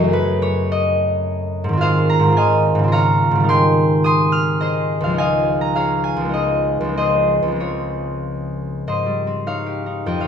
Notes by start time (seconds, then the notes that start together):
Already playing: F#2 A4 C#5 E5
0.00 F#3 A3
0.08 G#4
0.13 B4
0.42 C#5
0.72 D#5
1.64 G#2
1.69 D#3
1.73 C4
1.77 F4 F5
1.82 G#4 C5
2.09 A#5
2.19 G#2 D#3
2.28 C4
2.32 F4
2.37 D#5 F5 G#5
2.75 G#2
2.79 C#3
2.84 C4
2.88 F4
2.92 C#5 F5 A#5
3.31 G#2
3.35 D#3
3.40 G3 D#4
3.49 G5 G#5 C6
4.04 G#5 C6 D#6
4.32 F6
4.61 G#4 C5 D#5
5.00 C#2 F5
5.05 F3
5.10 G#3
5.14 D#4
5.18 D#5 F5 G#5
5.61 A#5
5.75 G#4 C#5 F5
6.04 G#5
6.17 C#2
6.21 F3
6.25 G#3
6.29 D#4
6.33 G#4 D#5
6.81 C#2 F3
6.89 G#3
6.93 C4
6.97 G#4 C5 D#5
7.43 C#2
7.47 F3
7.52 G#3
7.56 C4
7.60 F4 G#4 C#5
8.87 G#2 C5 D#5
9.06 G3
9.27 C4
9.47 D#4 C#5 F5
9.66 G4
9.86 D#4
10.06 F2 D#5 G5
10.21 D#3 C#5 F5